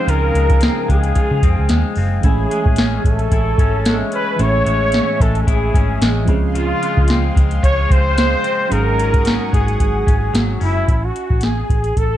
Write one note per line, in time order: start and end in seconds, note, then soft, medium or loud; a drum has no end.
0.00 1.91 F3 medium
0.00 0.34 G#3 medium
0.00 0.61 C4 medium
0.00 1.92 C4 medium
0.00 1.93 C#4 medium
0.00 1.94 D#4 medium
0.00 2.19 G#4 medium
0.00 0.11 C5 loud
0.00 2.19 F5 medium
0.00 6.24 G#5 medium
0.00 2.20 D#6 medium
0.08 0.29 C#2 loud
0.08 2.24 C#3 medium
0.08 1.15 F4 medium
0.08 0.90 A#4 loud
0.08 closed hi-hat medium
0.34 0.68 C#2 medium
0.34 0.88 G#3 medium
0.34 closed hi-hat medium
0.50 kick loud
0.50 closed hi-hat medium
0.61 1.42 C4 medium
0.61 snare loud
0.61 closed hi-hat medium
0.88 1.11 C#2 loud
0.88 1.69 G#3 medium
0.88 1.94 G#4 medium
0.88 kick medium
0.88 closed hi-hat medium
1.03 closed hi-hat soft
1.15 2.24 F4 medium
1.15 kick medium
1.15 closed hi-hat medium
1.31 1.40 C#3 medium
1.43 1.55 F2 medium
1.43 1.96 C4 medium
1.43 kick loud
1.43 closed hi-hat medium
1.58 1.68 C#2 medium
1.69 1.82 D#2 medium
1.69 2.50 G#3 medium
1.69 snare loud
1.69 closed hi-hat loud
1.95 2.18 F#1 medium
1.95 2.30 C4 medium
1.95 open hi-hat soft
2.21 2.45 A1 loud
2.21 4.34 E3 medium
2.21 4.35 A3 medium
2.21 4.36 C#4 medium
2.21 3.31 E4 medium
2.21 6.25 C#5 medium
2.21 6.25 E5 medium
2.21 kick loud
2.21 closed hi-hat medium
2.26 3.02 G#4 medium
2.26 4.37 G#5 medium
2.51 3.86 G#3 medium
2.51 closed hi-hat medium
2.66 2.97 A1 medium
2.66 kick medium
2.76 3.59 C#4 medium
2.76 snare loud
2.76 closed hi-hat medium
3.05 3.26 A1 medium
3.05 4.09 A4 medium
3.05 kick medium
3.05 closed hi-hat medium
3.19 closed hi-hat soft
3.31 3.53 A1 loud
3.31 4.39 E4 medium
3.31 kick medium
3.31 closed hi-hat medium
3.58 4.02 G#1 medium
3.58 4.13 C#4 medium
3.58 kick loud
3.58 closed hi-hat medium
3.85 4.66 G#3 medium
3.85 snare loud
3.85 closed hi-hat loud
4.12 4.93 C#4 medium
4.12 4.43 B4 loud
4.12 closed hi-hat medium
4.36 4.61 A1 loud
4.36 6.34 A2 medium
4.36 6.23 E3 medium
4.36 6.24 A3 medium
4.36 6.25 C#4 medium
4.36 5.46 E4 medium
4.36 closed hi-hat medium
4.41 6.26 G#4 medium
4.41 5.23 C#5 loud
4.66 5.00 A1 medium
4.66 5.20 G#3 medium
4.66 closed hi-hat medium
4.92 5.74 C#4 medium
4.92 snare loud
4.92 closed hi-hat medium
5.20 5.42 A1 loud
5.20 6.01 G#3 medium
5.20 5.42 A4 medium
5.20 kick medium
5.20 closed hi-hat medium
5.35 closed hi-hat soft
5.42 5.50 A4 medium
5.47 5.69 A1 loud
5.47 6.34 E4 medium
5.47 6.29 G#4 medium
5.47 kick medium
5.47 closed hi-hat medium
5.74 5.96 G#1 medium
5.74 7.08 C#4 medium
5.74 kick loud
5.74 closed hi-hat medium
6.01 6.28 A1 medium
6.01 6.82 G#3 medium
6.01 snare loud
6.01 closed hi-hat loud
6.25 6.71 C#2 medium
6.25 6.54 C#3 medium
6.25 8.39 F3 medium
6.25 8.40 C4 medium
6.25 8.41 C#4 medium
6.25 kick loud
6.25 closed hi-hat medium
6.30 10.85 G#4 medium
6.30 8.41 G#4 medium
6.30 8.70 F5 medium
6.30 8.70 C6 medium
6.55 8.71 C#3 medium
6.55 7.61 F4 medium
6.55 7.33 F4 loud
6.55 closed hi-hat medium
6.82 7.35 G#3 medium
6.82 closed hi-hat medium
6.97 7.29 C#2 loud
6.97 kick medium
7.08 7.87 C4 medium
7.08 snare loud
7.08 closed hi-hat loud
7.35 7.58 C#2 medium
7.35 8.16 G#3 medium
7.35 kick medium
7.35 closed hi-hat medium
7.51 closed hi-hat medium
7.63 7.85 C#2 medium
7.63 8.71 F4 medium
7.63 7.93 C#5 loud
7.63 kick medium
7.63 closed hi-hat medium
7.89 8.34 C#2 medium
7.89 8.42 C4 medium
7.89 8.74 C5 loud
7.89 kick loud
7.89 closed hi-hat medium
8.17 8.97 G#3 medium
8.17 snare loud
8.17 closed hi-hat loud
8.43 8.77 C4 medium
8.43 closed hi-hat medium
8.68 9.37 G#1 loud
8.68 10.88 G#2 medium
8.68 10.82 F#3 medium
8.68 10.83 C#4 medium
8.68 10.84 D#4 medium
8.68 9.80 D#4 medium
8.68 closed hi-hat medium
8.72 10.85 G#4 medium
8.72 9.53 A#4 loud
8.72 10.86 F#5 medium
8.72 10.86 C#6 medium
8.72 10.86 D#6 medium
8.98 9.51 F#3 medium
8.98 closed hi-hat medium
9.14 kick loud
9.14 closed hi-hat medium
9.25 10.06 C#4 medium
9.25 snare loud
9.25 closed hi-hat medium
9.52 9.75 G#1 loud
9.52 10.32 F#3 medium
9.52 10.58 G#4 medium
9.52 kick medium
9.52 closed hi-hat medium
9.68 closed hi-hat soft
9.80 10.01 G#1 medium
9.80 kick medium
9.80 closed hi-hat medium
10.07 10.29 G#1 medium
10.07 10.60 C#4 medium
10.07 kick loud
10.07 closed hi-hat medium
10.33 10.55 G#1 medium
10.33 10.94 F#3 medium
10.33 snare loud
10.33 closed hi-hat loud
10.60 10.83 F#1 medium
10.60 11.44 C#4 medium
10.60 11.06 E4 medium
10.60 open hi-hat soft
10.88 11.10 A1 medium
10.88 kick loud
10.88 closed hi-hat medium
11.05 11.45 F#4 medium
11.16 closed hi-hat medium
11.30 11.62 A1 medium
11.30 kick medium
11.41 11.99 G#4 medium
11.41 snare loud
11.41 closed hi-hat medium
11.70 11.91 A1 medium
11.70 kick medium
11.70 closed hi-hat medium
11.84 closed hi-hat soft
11.97 12.17 A1 medium
11.97 12.17 A4 medium
11.97 kick medium
11.97 closed hi-hat medium